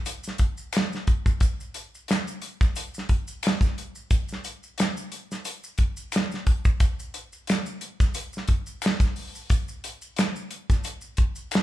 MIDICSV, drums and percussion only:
0, 0, Header, 1, 2, 480
1, 0, Start_track
1, 0, Tempo, 674157
1, 1005, Time_signature, 4, 2, 24, 8
1, 8279, End_track
2, 0, Start_track
2, 0, Title_t, "Drums"
2, 41, Note_on_c, 9, 82, 78
2, 42, Note_on_c, 9, 42, 88
2, 112, Note_off_c, 9, 82, 0
2, 114, Note_off_c, 9, 42, 0
2, 168, Note_on_c, 9, 82, 58
2, 196, Note_on_c, 9, 38, 38
2, 239, Note_off_c, 9, 82, 0
2, 267, Note_off_c, 9, 38, 0
2, 273, Note_on_c, 9, 42, 56
2, 281, Note_on_c, 9, 36, 84
2, 344, Note_off_c, 9, 42, 0
2, 352, Note_off_c, 9, 36, 0
2, 409, Note_on_c, 9, 82, 49
2, 481, Note_off_c, 9, 82, 0
2, 517, Note_on_c, 9, 42, 78
2, 518, Note_on_c, 9, 26, 67
2, 518, Note_on_c, 9, 82, 65
2, 546, Note_on_c, 9, 38, 109
2, 588, Note_off_c, 9, 42, 0
2, 590, Note_off_c, 9, 26, 0
2, 590, Note_off_c, 9, 82, 0
2, 617, Note_off_c, 9, 38, 0
2, 659, Note_on_c, 9, 82, 42
2, 675, Note_on_c, 9, 38, 32
2, 730, Note_off_c, 9, 82, 0
2, 746, Note_off_c, 9, 38, 0
2, 764, Note_on_c, 9, 42, 53
2, 767, Note_on_c, 9, 36, 94
2, 835, Note_off_c, 9, 42, 0
2, 838, Note_off_c, 9, 36, 0
2, 897, Note_on_c, 9, 36, 95
2, 901, Note_on_c, 9, 82, 51
2, 968, Note_off_c, 9, 36, 0
2, 973, Note_off_c, 9, 82, 0
2, 1000, Note_on_c, 9, 42, 68
2, 1004, Note_on_c, 9, 36, 106
2, 1011, Note_on_c, 9, 82, 68
2, 1071, Note_off_c, 9, 42, 0
2, 1075, Note_off_c, 9, 36, 0
2, 1082, Note_off_c, 9, 82, 0
2, 1142, Note_on_c, 9, 82, 46
2, 1213, Note_off_c, 9, 82, 0
2, 1241, Note_on_c, 9, 42, 76
2, 1252, Note_on_c, 9, 82, 41
2, 1312, Note_off_c, 9, 42, 0
2, 1323, Note_off_c, 9, 82, 0
2, 1386, Note_on_c, 9, 82, 43
2, 1457, Note_off_c, 9, 82, 0
2, 1482, Note_on_c, 9, 42, 67
2, 1500, Note_on_c, 9, 38, 103
2, 1506, Note_on_c, 9, 26, 70
2, 1506, Note_on_c, 9, 82, 77
2, 1553, Note_off_c, 9, 42, 0
2, 1571, Note_off_c, 9, 38, 0
2, 1577, Note_off_c, 9, 26, 0
2, 1577, Note_off_c, 9, 82, 0
2, 1621, Note_on_c, 9, 82, 56
2, 1692, Note_off_c, 9, 82, 0
2, 1720, Note_on_c, 9, 42, 58
2, 1792, Note_off_c, 9, 42, 0
2, 1858, Note_on_c, 9, 36, 102
2, 1863, Note_on_c, 9, 82, 46
2, 1869, Note_on_c, 9, 38, 37
2, 1929, Note_off_c, 9, 36, 0
2, 1934, Note_off_c, 9, 82, 0
2, 1940, Note_off_c, 9, 38, 0
2, 1963, Note_on_c, 9, 82, 85
2, 1968, Note_on_c, 9, 42, 77
2, 2034, Note_off_c, 9, 82, 0
2, 2040, Note_off_c, 9, 42, 0
2, 2095, Note_on_c, 9, 82, 62
2, 2123, Note_on_c, 9, 38, 40
2, 2166, Note_off_c, 9, 82, 0
2, 2194, Note_off_c, 9, 38, 0
2, 2200, Note_on_c, 9, 42, 52
2, 2203, Note_on_c, 9, 36, 85
2, 2271, Note_off_c, 9, 42, 0
2, 2274, Note_off_c, 9, 36, 0
2, 2332, Note_on_c, 9, 82, 52
2, 2403, Note_off_c, 9, 82, 0
2, 2440, Note_on_c, 9, 42, 79
2, 2443, Note_on_c, 9, 26, 64
2, 2443, Note_on_c, 9, 82, 62
2, 2470, Note_on_c, 9, 38, 127
2, 2512, Note_off_c, 9, 42, 0
2, 2514, Note_off_c, 9, 26, 0
2, 2514, Note_off_c, 9, 82, 0
2, 2541, Note_off_c, 9, 38, 0
2, 2569, Note_on_c, 9, 36, 94
2, 2575, Note_on_c, 9, 82, 44
2, 2594, Note_on_c, 9, 38, 37
2, 2641, Note_off_c, 9, 36, 0
2, 2646, Note_off_c, 9, 82, 0
2, 2665, Note_off_c, 9, 38, 0
2, 2691, Note_on_c, 9, 42, 50
2, 2762, Note_off_c, 9, 42, 0
2, 2815, Note_on_c, 9, 82, 50
2, 2886, Note_off_c, 9, 82, 0
2, 2924, Note_on_c, 9, 42, 70
2, 2925, Note_on_c, 9, 36, 111
2, 2925, Note_on_c, 9, 82, 64
2, 2995, Note_off_c, 9, 42, 0
2, 2996, Note_off_c, 9, 36, 0
2, 2996, Note_off_c, 9, 82, 0
2, 3051, Note_on_c, 9, 82, 47
2, 3080, Note_on_c, 9, 38, 37
2, 3123, Note_off_c, 9, 82, 0
2, 3151, Note_off_c, 9, 38, 0
2, 3161, Note_on_c, 9, 82, 39
2, 3165, Note_on_c, 9, 42, 79
2, 3232, Note_off_c, 9, 82, 0
2, 3236, Note_off_c, 9, 42, 0
2, 3299, Note_on_c, 9, 82, 41
2, 3371, Note_off_c, 9, 82, 0
2, 3401, Note_on_c, 9, 42, 72
2, 3416, Note_on_c, 9, 26, 75
2, 3416, Note_on_c, 9, 82, 78
2, 3419, Note_on_c, 9, 38, 107
2, 3472, Note_off_c, 9, 42, 0
2, 3488, Note_off_c, 9, 26, 0
2, 3488, Note_off_c, 9, 82, 0
2, 3490, Note_off_c, 9, 38, 0
2, 3538, Note_on_c, 9, 82, 53
2, 3610, Note_off_c, 9, 82, 0
2, 3643, Note_on_c, 9, 42, 59
2, 3714, Note_off_c, 9, 42, 0
2, 3784, Note_on_c, 9, 82, 49
2, 3786, Note_on_c, 9, 38, 41
2, 3855, Note_off_c, 9, 82, 0
2, 3857, Note_off_c, 9, 38, 0
2, 3879, Note_on_c, 9, 82, 77
2, 3882, Note_on_c, 9, 42, 83
2, 3950, Note_off_c, 9, 82, 0
2, 3953, Note_off_c, 9, 42, 0
2, 4013, Note_on_c, 9, 82, 60
2, 4084, Note_off_c, 9, 82, 0
2, 4113, Note_on_c, 9, 42, 56
2, 4120, Note_on_c, 9, 36, 80
2, 4184, Note_off_c, 9, 42, 0
2, 4191, Note_off_c, 9, 36, 0
2, 4249, Note_on_c, 9, 82, 53
2, 4320, Note_off_c, 9, 82, 0
2, 4357, Note_on_c, 9, 42, 77
2, 4359, Note_on_c, 9, 26, 60
2, 4359, Note_on_c, 9, 82, 70
2, 4386, Note_on_c, 9, 38, 116
2, 4428, Note_off_c, 9, 42, 0
2, 4430, Note_off_c, 9, 26, 0
2, 4430, Note_off_c, 9, 82, 0
2, 4458, Note_off_c, 9, 38, 0
2, 4497, Note_on_c, 9, 82, 45
2, 4515, Note_on_c, 9, 38, 41
2, 4568, Note_off_c, 9, 82, 0
2, 4586, Note_off_c, 9, 38, 0
2, 4604, Note_on_c, 9, 42, 54
2, 4605, Note_on_c, 9, 36, 96
2, 4675, Note_off_c, 9, 42, 0
2, 4676, Note_off_c, 9, 36, 0
2, 4734, Note_on_c, 9, 82, 46
2, 4737, Note_on_c, 9, 36, 112
2, 4805, Note_off_c, 9, 82, 0
2, 4808, Note_off_c, 9, 36, 0
2, 4842, Note_on_c, 9, 42, 70
2, 4844, Note_on_c, 9, 36, 110
2, 4846, Note_on_c, 9, 82, 67
2, 4913, Note_off_c, 9, 42, 0
2, 4915, Note_off_c, 9, 36, 0
2, 4918, Note_off_c, 9, 82, 0
2, 4981, Note_on_c, 9, 82, 51
2, 5052, Note_off_c, 9, 82, 0
2, 5084, Note_on_c, 9, 42, 78
2, 5088, Note_on_c, 9, 82, 44
2, 5155, Note_off_c, 9, 42, 0
2, 5159, Note_off_c, 9, 82, 0
2, 5216, Note_on_c, 9, 82, 45
2, 5287, Note_off_c, 9, 82, 0
2, 5321, Note_on_c, 9, 42, 65
2, 5337, Note_on_c, 9, 26, 65
2, 5337, Note_on_c, 9, 82, 75
2, 5339, Note_on_c, 9, 38, 107
2, 5392, Note_off_c, 9, 42, 0
2, 5408, Note_off_c, 9, 26, 0
2, 5408, Note_off_c, 9, 82, 0
2, 5410, Note_off_c, 9, 38, 0
2, 5454, Note_on_c, 9, 82, 58
2, 5525, Note_off_c, 9, 82, 0
2, 5561, Note_on_c, 9, 42, 59
2, 5632, Note_off_c, 9, 42, 0
2, 5697, Note_on_c, 9, 36, 106
2, 5701, Note_on_c, 9, 82, 53
2, 5707, Note_on_c, 9, 38, 40
2, 5768, Note_off_c, 9, 36, 0
2, 5772, Note_off_c, 9, 82, 0
2, 5778, Note_off_c, 9, 38, 0
2, 5798, Note_on_c, 9, 82, 76
2, 5800, Note_on_c, 9, 42, 88
2, 5869, Note_off_c, 9, 82, 0
2, 5872, Note_off_c, 9, 42, 0
2, 5931, Note_on_c, 9, 82, 51
2, 5959, Note_on_c, 9, 38, 44
2, 6002, Note_off_c, 9, 82, 0
2, 6031, Note_off_c, 9, 38, 0
2, 6034, Note_on_c, 9, 42, 58
2, 6042, Note_on_c, 9, 36, 82
2, 6105, Note_off_c, 9, 42, 0
2, 6114, Note_off_c, 9, 36, 0
2, 6169, Note_on_c, 9, 82, 51
2, 6240, Note_off_c, 9, 82, 0
2, 6279, Note_on_c, 9, 26, 69
2, 6279, Note_on_c, 9, 42, 84
2, 6279, Note_on_c, 9, 82, 68
2, 6308, Note_on_c, 9, 38, 105
2, 6350, Note_off_c, 9, 26, 0
2, 6350, Note_off_c, 9, 42, 0
2, 6350, Note_off_c, 9, 82, 0
2, 6380, Note_off_c, 9, 38, 0
2, 6408, Note_on_c, 9, 36, 101
2, 6409, Note_on_c, 9, 82, 47
2, 6431, Note_on_c, 9, 38, 34
2, 6480, Note_off_c, 9, 36, 0
2, 6481, Note_off_c, 9, 82, 0
2, 6502, Note_off_c, 9, 38, 0
2, 6521, Note_on_c, 9, 46, 42
2, 6592, Note_off_c, 9, 46, 0
2, 6658, Note_on_c, 9, 82, 51
2, 6729, Note_off_c, 9, 82, 0
2, 6761, Note_on_c, 9, 42, 73
2, 6765, Note_on_c, 9, 36, 118
2, 6771, Note_on_c, 9, 82, 61
2, 6833, Note_off_c, 9, 42, 0
2, 6837, Note_off_c, 9, 36, 0
2, 6842, Note_off_c, 9, 82, 0
2, 6895, Note_on_c, 9, 82, 53
2, 6966, Note_off_c, 9, 82, 0
2, 7006, Note_on_c, 9, 42, 81
2, 7007, Note_on_c, 9, 82, 43
2, 7077, Note_off_c, 9, 42, 0
2, 7078, Note_off_c, 9, 82, 0
2, 7132, Note_on_c, 9, 82, 45
2, 7203, Note_off_c, 9, 82, 0
2, 7237, Note_on_c, 9, 42, 65
2, 7252, Note_on_c, 9, 26, 78
2, 7252, Note_on_c, 9, 82, 69
2, 7255, Note_on_c, 9, 38, 104
2, 7308, Note_off_c, 9, 42, 0
2, 7323, Note_off_c, 9, 26, 0
2, 7323, Note_off_c, 9, 82, 0
2, 7326, Note_off_c, 9, 38, 0
2, 7375, Note_on_c, 9, 82, 50
2, 7446, Note_off_c, 9, 82, 0
2, 7480, Note_on_c, 9, 42, 60
2, 7551, Note_off_c, 9, 42, 0
2, 7616, Note_on_c, 9, 36, 103
2, 7621, Note_on_c, 9, 82, 53
2, 7624, Note_on_c, 9, 38, 34
2, 7688, Note_off_c, 9, 36, 0
2, 7692, Note_off_c, 9, 82, 0
2, 7695, Note_off_c, 9, 38, 0
2, 7717, Note_on_c, 9, 82, 82
2, 7723, Note_on_c, 9, 42, 85
2, 7788, Note_off_c, 9, 82, 0
2, 7794, Note_off_c, 9, 42, 0
2, 7841, Note_on_c, 9, 82, 52
2, 7912, Note_off_c, 9, 82, 0
2, 7953, Note_on_c, 9, 42, 59
2, 7963, Note_on_c, 9, 36, 89
2, 8024, Note_off_c, 9, 42, 0
2, 8034, Note_off_c, 9, 36, 0
2, 8085, Note_on_c, 9, 82, 48
2, 8156, Note_off_c, 9, 82, 0
2, 8197, Note_on_c, 9, 42, 74
2, 8200, Note_on_c, 9, 26, 63
2, 8200, Note_on_c, 9, 82, 69
2, 8226, Note_on_c, 9, 38, 118
2, 8268, Note_off_c, 9, 42, 0
2, 8271, Note_off_c, 9, 26, 0
2, 8271, Note_off_c, 9, 82, 0
2, 8279, Note_off_c, 9, 38, 0
2, 8279, End_track
0, 0, End_of_file